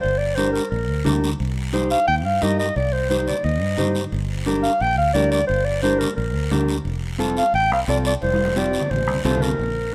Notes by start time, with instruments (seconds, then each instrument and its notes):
0.01 fingered electric bass G1, clarinet C5, high conga, long guiro
0.18 clarinet D5
0.35 clean electric guitar D4 G4 A#4, clarinet C5, high conga, short guiro
0.52 clarinet A#4, short guiro
0.70 fingered electric bass A#1, clarinet A#4, high conga, long guiro
0.90 fingered electric bass D2
1.05 fingered electric bass D2, clean electric guitar D4 G4 A#4, high conga, low conga, short guiro
1.24 short guiro
1.39 fingered electric bass C2, high conga, long guiro
1.73 clean electric guitar D#4 G4 C5, high conga, short guiro
1.90 clarinet F5, short guiro
2.07 fingered electric bass D#2, clarinet G5, high conga, long guiro
2.25 fingered electric bass G2, clarinet F5
2.41 fingered electric bass G2, clean electric guitar D#4 G4 A#4, clarinet D#5, high conga, short guiro
2.59 clarinet D#5, short guiro
2.76 fingered electric bass C2, clarinet D5, high conga, long guiro
2.92 clarinet C5
3.09 clean electric guitar D#4 G4 C5, clarinet C5, high conga, short guiro
3.27 clarinet D5, low conga, short guiro
3.44 fingered electric bass D#2, clarinet D#5, high conga, long guiro
3.61 fingered electric bass G2
3.78 fingered electric bass G2, clean electric guitar D#4 G4 C5, high conga, low conga, short guiro
3.95 short guiro
4.12 fingered electric bass G1, high conga, long guiro
4.46 clean electric guitar D4 G4 A#4, high conga, short guiro
4.63 clarinet F5, short guiro
4.80 fingered electric bass A#1, clarinet G5, high conga, long guiro
4.98 fingered electric bass D2, clarinet F5
5.13 fingered electric bass D2, clean electric guitar D4 G4 A#4, clarinet D5, high conga, short guiro
5.31 clarinet D5, short guiro
5.47 fingered electric bass G1, clarinet C5, high conga, long guiro
5.65 clarinet D5
5.82 clean electric guitar D4 G4 A#4, clarinet C5, high conga, short guiro
5.99 clarinet A#4, low conga, short guiro
6.16 fingered electric bass A#1, clarinet A#4, high conga, long guiro
6.35 fingered electric bass D2
6.51 fingered electric bass D2, clean electric guitar D4 G4 A#4, high conga, low conga, short guiro
6.68 short guiro
6.85 fingered electric bass F1, high conga, long guiro
7.18 clean electric guitar C4 F4 A4, high conga, short guiro
7.37 clarinet F5, short guiro
7.54 fingered electric bass A1, clarinet G5, high conga, long guiro
7.71 fingered electric bass C2, clarinet F5
7.88 fingered electric bass C2, clean electric guitar C4 F4 A4, clarinet D5, high conga, short guiro
8.05 clarinet D5, short guiro
8.22 fingered electric bass F1, clarinet C5, high conga, long guiro
8.34 high conga
8.45 high conga
8.56 clean electric guitar C4 F4 G4, clarinet D5, high conga, short guiro
8.73 short guiro
8.80 low conga
8.90 fingered electric bass A1, clarinet C5, low conga, long guiro
9.07 fingered electric bass C2
9.14 low conga
9.25 fingered electric bass C2, clean electric guitar C4 F4 A4, clarinet C5, low conga, short guiro
9.36 low conga
9.41 clarinet A#4, short guiro
9.48 low conga
9.59 fingered electric bass A#1, high conga, long guiro